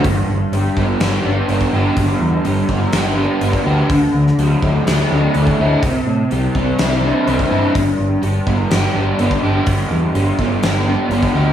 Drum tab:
HH |o---o---o---o---|o---o---o---o---|o---o---o---o---|o---o---o---o---|
SD |--------o-------|--------o-------|---o----o-------|--------o-------|
BD |o-----o------o--|o-----o------o--|o-----o------o--|o-----o------o--|

HH |o---o---o---o---|o---o---o---o---|
SD |--------o-------|--------o-------|
BD |o-----o------o--|o-----o------o--|